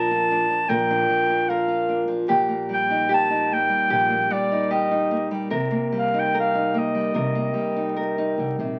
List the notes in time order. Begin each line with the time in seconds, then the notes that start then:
Already playing: A#1 A#2 F3 D4 A#4 A5
0.11 F4
0.31 D4
0.50 F3
0.69 A#1 A#2 A#4 G5
0.91 D4
1.10 F3
1.30 F4
1.49 A#4 F5
1.68 F4
1.89 D4
2.08 F3
2.28 A#1 A#2 G4
2.49 A#3
2.69 G3
2.73 G5
2.90 D#4
3.09 G4
3.14 A5
3.30 D#4
3.52 A#3 G5
3.69 G3
3.90 A#1 A#2 G4
4.10 A#3
4.30 G3 D5
4.52 D#4
4.71 G4 D#5
4.91 D#4
5.11 A#3
5.31 G3
5.50 C2 C3 A#4
5.71 A#3
5.92 G3
5.98 F5
6.14 D#4
6.19 G5
6.34 A#4
6.40 F5
6.55 D#4
6.74 A#3
6.78 D#5
6.95 G3
7.14 C2 C3 A#4
7.35 A#3
7.54 G3
7.76 D#4
7.96 A#4
8.18 D#4
8.38 C2 D3
8.59 A#1 C3